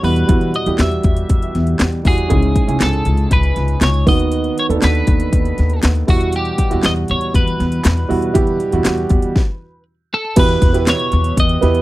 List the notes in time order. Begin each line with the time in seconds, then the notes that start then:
Already playing: B2 G3 E4 A4 F#5
0.03 E2 B2 G3 E4 F#4 B4, open hi-hat
0.16 closed hi-hat
0.27 E2 G3 E4 F#4, kick, closed hi-hat
0.41 closed hi-hat
0.54 D#5, closed hi-hat
0.66 E2 G3 E4 G4, closed hi-hat
0.78 E2 E5, snare, clap, closed hi-hat
0.91 closed hi-hat
1.03 E2, kick, closed hi-hat
1.17 closed hi-hat
1.29 E2, kick, closed hi-hat
1.42 closed hi-hat
1.55 E2, snare, closed hi-hat
1.67 closed hi-hat
1.80 E2, snare, clap, closed hi-hat
1.92 closed hi-hat
2.04 E2 G3 E4 F#4 G#4, kick, open hi-hat
2.18 closed hi-hat
2.28 C#2 G#2 C#4 E4 G#4, kick, closed hi-hat
2.42 closed hi-hat
2.56 kick, closed hi-hat
2.67 C#2 C#4 E4 G#5, closed hi-hat
2.80 C#2 A4, snare, clap, closed hi-hat
2.93 closed hi-hat
3.05 C#2, closed hi-hat
3.17 closed hi-hat
3.31 C#2 B4, kick, closed hi-hat
3.43 closed hi-hat
3.56 C#2, snare, closed hi-hat
3.68 closed hi-hat
3.81 C#2 C#5, snare, clap, closed hi-hat
3.94 closed hi-hat
4.06 D#2 D#3 B3 D#4 F#4 D#5, kick, open hi-hat
4.20 closed hi-hat
4.32 closed hi-hat
4.44 closed hi-hat
4.58 C#5, closed hi-hat
4.69 D#2 B3 D4 A4, closed hi-hat
4.76 D#4
4.82 D#2 B4, snare, clap, closed hi-hat
4.95 closed hi-hat
5.07 D#2, kick, closed hi-hat
5.20 closed hi-hat
5.33 D#2, kick, closed hi-hat
5.45 closed hi-hat
5.58 D#2, snare, closed hi-hat
5.70 closed hi-hat
5.83 D#2, snare, clap, closed hi-hat
5.95 closed hi-hat
6.07 E2 B2 G3 E4 F#4, kick, open hi-hat
6.21 closed hi-hat
6.32 G4, closed hi-hat
6.45 closed hi-hat
6.58 kick, closed hi-hat
6.70 E2 G3 E4 F#4, closed hi-hat
6.83 E2 D#5, snare, clap, closed hi-hat
6.96 closed hi-hat
7.08 E2 C#5, closed hi-hat
7.21 closed hi-hat
7.34 E2 B4, kick, closed hi-hat
7.47 closed hi-hat
7.60 E2, snare, closed hi-hat
7.72 closed hi-hat
7.85 E2, snare, clap, closed hi-hat
7.97 closed hi-hat
8.08 E2 B2 G3 E4 F#4, open hi-hat
8.22 closed hi-hat
8.33 E2 G3 E4 G4, kick, closed hi-hat
8.47 closed hi-hat
8.60 closed hi-hat
8.71 E2 G3 E4 F#4, closed hi-hat
8.85 E2, snare, clap, closed hi-hat
8.98 closed hi-hat
9.09 E2, kick, closed hi-hat
9.22 closed hi-hat
9.36 kick, snare
10.14 A4
10.36 E2 B2 B3 E4 G4 B4, kick, closed hi-hat, crash
10.49 closed hi-hat
10.62 E2, kick, closed hi-hat
10.73 B3 E4 G4 B4, closed hi-hat
10.87 C#5, snare, clap, closed hi-hat
10.99 closed hi-hat
11.12 E2, closed hi-hat
11.24 closed hi-hat
11.37 E2 D#5, kick, closed hi-hat
11.49 closed hi-hat
11.61 E2 B3 E4 G4 B4, snare, closed hi-hat
11.75 closed hi-hat